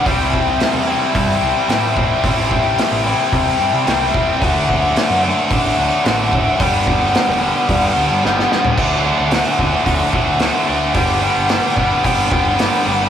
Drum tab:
CC |----------------|----------------|----------------|----------------|
HH |o---o---o---o---|o---o---o---o---|o---o---o---o---|o---o---o-------|
SD |----o-------o---|----o-------o---|----o-------o---|----oo------ooo-|
FT |----------------|----------------|----------------|---------------o|
BD |o-o-----o-----o-|o-o-----o-----o-|o-o-----o-----o-|o-o-----o-------|

CC |x---------------|----------------|
HH |----o---o---o---|o---o---o---o---|
SD |----o-------o---|----o-------o---|
FT |----------------|----------------|
BD |o-----o-o-o-----|o-----o-o-o-----|